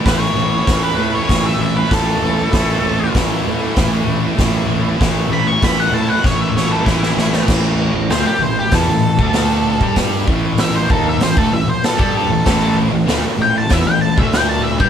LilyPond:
<<
  \new Staff \with { instrumentName = "Lead electric guitar" } { \time 4/4 \key a \major \tempo 4 = 97 b'16 cis''4 b'8 cis''8 e''8 b'16 a'4~ | a'4 r2. | r8 b''16 cis'''16 b''16 fis''16 a''16 fis''16 cis''16 e''16 cis''16 a'16 e'4 | r4 c''16 g'16 c''16 g'16 a'2 |
r4 e''16 c''16 a'16 e''16 c''16 a'16 e''16 c''16 a'8 a'8~ | a'8 r4 g''16 a''16 e''16 g''16 a''16 e''16 g''16 a''16 e''16 g''16 | }
  \new Staff \with { instrumentName = "Distorted electric guitar" } { \clef bass \time 4/4 \key a \major <a, e a>8 <a, e a>16 <e a>16 <a, e a>8 <a, e a>16 <e a>16 <a, e a>16 <e a>8 <e a>16 <a, e a>8 <a, e a>16 <e a>16 | <a, e a>8 <a, e a>16 <e a>16 <a, e a>8 <a, e a>16 <e a>16 <a, e a>16 <e a>8 <e a>16 <a, e a>8 <a, e a>16 <e a>16 | <a, e a>8 <a, e a>16 <e a>16 <a, e a>8 <a, e a>16 <e a>16 <a, e a>16 <e a>8 <e a>16 <a, e a>8 <a, e a>16 <e a>16 | <a, e a>8. <a, e>16 <d a>16 r16 <a, e>8 <e b>16 <a, e>8 <d a d'>4 <g d' g'>16~ |
<g d' g'>8 <a, e a>4 <dis bes dis'>8 <a, e>16 <d a>16 <a, e>16 r8 <g d' g'>8 <a, e>16 | <a, e a>8. <a, e>16 <d a>16 r16 <a, e>8 <e b>16 <a, e>8 <d a d'>4 <g d'>16 | }
  \new Staff \with { instrumentName = "Fingered electric bass" } { \clef bass \time 4/4 \key a \major a,,8 a,,8 a,,8 a,8 a,,8 a,,8 a,,8 a,,8 | a,,8 a,,8 a,,8 a,8 a,,8 a,,8 a,,8 a,,8 | a,,8 a,,8 a,,8 a,8 a,,8 a,,8 a,,8 a,,8 | a,,8. a,,16 d,16 r16 a,,8 e,16 a,,8 d,4 g,16~ |
g,8 a,,4 dis,8 a,,16 d,16 a,,16 r8 g,8 a,,16 | a,,8. a,,16 d,16 r16 a,,8 e,16 a,,8 d,4 g,16 | }
  \new DrumStaff \with { instrumentName = "Drums" } \drummode { \time 4/4 <hho bd sn>4 <hho bd sn>4 <hho bd sn>4 <hho bd sn>4 | <hho bd sn>4 <hho bd sn>4 <hho bd sn>4 <hho bd sn>4 | <hho bd sn>4 <hho bd sn>4 <bd sn>8 sn8 <bd sn>16 sn16 sn16 sn16 | <cymc bd sn>4 <hho sn>4 <hho bd sn>8. bd16 <hho sn>8. bd16 |
<hho bd sn>8 bd8 <hho sn>8 bd8 <hho sn>16 bd8. <hho sn>16 bd8. | <hho bd sn>4 <hho sn>4 <hho bd sn>8. bd16 <hho sn>8. bd16 | }
>>